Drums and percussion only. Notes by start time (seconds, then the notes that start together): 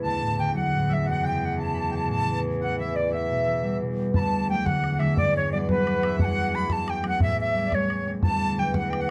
4.14 bodhran
4.33 bodhran
4.66 bodhran
4.84 bodhran
5.00 bodhran
5.17 bodhran
5.36 bodhran
5.69 bodhran
5.87 bodhran
6.03 bodhran
6.19 bodhran
6.38 bodhran
6.70 bodhran
6.88 bodhran
7.04 bodhran
7.20 bodhran
7.39 bodhran
7.72 bodhran
7.90 bodhran
8.23 bodhran
8.42 bodhran
8.74 bodhran
8.93 bodhran